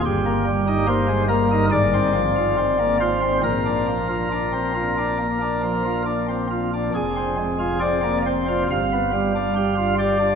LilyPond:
<<
  \new Staff \with { instrumentName = "Pipe organ" } { \time 4/4 \key bes \mixolydian \tempo 4 = 69 << { g'4 c''8 bes'8 d''4. c''8 | bes'2. r4 | \key f \dorian aes'4 d''8 c''8 f''4. d''8 | } \\ { g,16 bes16 g16 ees'16 bes16 aes16 bes16 ees'16 aes,16 c'16 f16 f'16 c'16 bes16 f'16 c'16 | bes,16 d'16 f16 f'16 d'16 c'16 f'16 d'16 bes16 d'16 f16 f'16 d'16 c'16 f'16 d'16 | f,16 c'16 aes16 f'16 c'16 bes16 c'16 f'16 g,16 b16 g16 d'16 g'16 f'16 g'16 d'16 | } >> }
  \new Staff \with { instrumentName = "Pipe organ" } { \clef bass \time 4/4 \key bes \mixolydian g,,2 aes,,2 | bes,,1 | \key f \dorian f,,2 g,,2 | }
>>